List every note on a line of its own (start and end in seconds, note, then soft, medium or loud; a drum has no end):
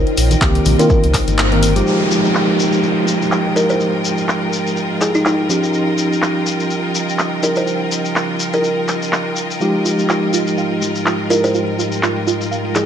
0.00 1.85 A#3 medium
0.00 1.83 D#4 medium
0.00 12.86 F4 medium
0.00 1.85 G4 medium
0.00 12.86 A#4 medium
0.00 1.85 C5 medium
0.00 12.86 D#5 medium
0.00 12.86 G5 medium
0.07 closed hi-hat soft
0.17 0.36 A#1 medium
0.17 open hi-hat loud
0.17 shekere medium
0.31 closed hi-hat medium
0.31 high conga medium
0.31 shekere medium
0.41 0.60 C2 medium
0.41 0.76 D#3 medium
0.41 0.76 A#3 medium
0.41 0.76 C4 medium
0.41 0.76 G4 loud
0.41 kick loud
0.41 clap loud
0.41 shekere soft
0.55 closed hi-hat medium
0.65 0.75 A#1 medium
0.65 open hi-hat loud
0.65 high conga medium
0.65 low conga medium
0.65 shekere medium
0.79 1.04 D#3 medium
0.79 1.04 A#3 medium
0.79 1.04 C4 medium
0.79 1.05 F4 loud
0.79 1.47 A#4 medium
0.79 closed hi-hat medium
0.79 shekere soft
0.90 kick loud
0.90 shekere soft
1.04 1.20 C2 loud
1.04 closed hi-hat medium
1.14 kick medium
1.14 clap medium
1.14 open hi-hat loud
1.14 shekere medium
1.27 1.82 G1 loud
1.27 closed hi-hat medium
1.27 high conga medium
1.27 shekere soft
1.38 clap loud
1.38 shekere soft
1.52 1.72 D#3 medium
1.52 1.72 A#3 medium
1.52 1.72 C4 medium
1.52 1.72 A#4 medium
1.52 closed hi-hat soft
1.63 open hi-hat loud
1.63 shekere medium
1.76 1.85 F3 medium
1.76 1.85 G#3 medium
1.76 1.86 D#4 medium
1.76 1.86 G4 loud
1.76 closed hi-hat medium
1.76 shekere medium
1.86 5.47 F3 medium
1.86 5.47 G#3 medium
1.86 5.46 G#3 medium
1.86 5.47 D#4 medium
1.86 12.86 F4 medium
1.86 9.57 G4 medium
1.86 5.47 G4 medium
1.86 12.86 D#5 medium
1.86 crash medium
1.86 downlifter medium
1.86 shekere soft
2.11 shekere medium
2.25 shekere soft
2.35 clap loud
2.35 shekere soft
2.49 closed hi-hat medium
2.59 shekere medium
2.72 shekere soft
2.83 shekere soft
3.08 shekere medium
3.22 shekere medium
3.32 clap loud
3.32 shekere soft
3.46 closed hi-hat soft
3.56 3.67 A#4 medium
3.56 shekere medium
3.70 3.86 C5 medium
3.70 closed hi-hat medium
3.70 shekere soft
3.80 shekere soft
4.05 shekere medium
4.18 closed hi-hat medium
4.18 shekere medium
4.29 clap loud
4.29 shekere soft
4.42 closed hi-hat soft
4.53 shekere medium
4.66 closed hi-hat medium
4.66 shekere soft
4.76 shekere soft
4.91 closed hi-hat soft
5.01 5.12 G#4 medium
5.01 clap medium
5.01 shekere medium
5.15 5.22 D#4 medium
5.15 closed hi-hat medium
5.15 shekere soft
5.25 5.34 D#4 medium
5.25 clap loud
5.25 shekere soft
5.39 closed hi-hat soft
5.49 9.34 F3 medium
5.49 9.34 C#4 medium
5.49 9.57 C#4 medium
5.49 9.34 D#4 medium
5.49 9.35 G4 medium
5.49 shekere medium
5.63 closed hi-hat medium
5.63 shekere medium
5.73 shekere soft
5.98 shekere medium
6.12 closed hi-hat medium
6.12 shekere soft
6.22 clap loud
6.22 shekere soft
6.36 closed hi-hat soft
6.46 shekere medium
6.60 closed hi-hat medium
6.60 shekere soft
6.70 shekere soft
6.84 closed hi-hat soft
6.95 shekere medium
7.08 closed hi-hat medium
7.08 shekere soft
7.19 clap loud
7.19 shekere soft
7.33 closed hi-hat soft
7.43 7.54 A#4 medium
7.43 shekere medium
7.56 7.73 C5 medium
7.56 closed hi-hat medium
7.56 shekere soft
7.67 shekere soft
7.92 shekere medium
8.05 closed hi-hat medium
8.05 shekere soft
8.16 clap loud
8.16 shekere soft
8.29 closed hi-hat soft
8.40 shekere medium
8.53 9.21 A#4 medium
8.53 closed hi-hat medium
8.53 shekere soft
8.64 shekere soft
8.78 closed hi-hat soft
8.88 clap medium
8.88 shekere medium
9.02 closed hi-hat medium
9.02 shekere soft
9.12 clap loud
9.12 shekere soft
9.26 closed hi-hat soft
9.36 shekere medium
9.50 closed hi-hat medium
9.50 shekere soft
9.60 12.86 F3 medium
9.60 12.86 G#3 medium
9.60 12.86 D#4 medium
9.60 9.74 F4 medium
9.60 12.86 G4 medium
9.60 shekere soft
9.85 9.90 F4 medium
9.85 shekere medium
9.99 closed hi-hat medium
9.99 shekere soft
10.09 10.15 F4 medium
10.09 clap loud
10.09 shekere soft
10.23 closed hi-hat soft
10.33 10.42 F4 loud
10.33 shekere medium
10.47 closed hi-hat medium
10.47 shekere soft
10.58 10.71 F5 medium
10.58 shekere soft
10.71 closed hi-hat soft
10.82 10.95 F3 medium
10.82 shekere medium
10.95 closed hi-hat medium
10.95 shekere soft
11.06 11.11 F4 medium
11.06 clap loud
11.06 shekere soft
11.20 closed hi-hat soft
11.30 11.39 F4 loud
11.30 11.41 A#4 medium
11.30 shekere medium
11.44 11.60 C5 medium
11.44 closed hi-hat medium
11.44 shekere soft
11.54 11.67 F4 medium
11.54 shekere soft
11.79 11.84 F4 medium
11.79 shekere medium
11.92 closed hi-hat medium
11.92 shekere soft
12.03 12.08 F4 medium
12.03 clap loud
12.03 shekere soft
12.17 closed hi-hat soft
12.27 12.36 F4 medium
12.27 shekere medium
12.41 closed hi-hat medium
12.41 shekere soft
12.51 12.64 F5 medium
12.51 shekere soft
12.65 closed hi-hat soft
12.75 12.86 F3 medium
12.75 12.86 G#4 medium
12.75 clap medium
12.75 shekere medium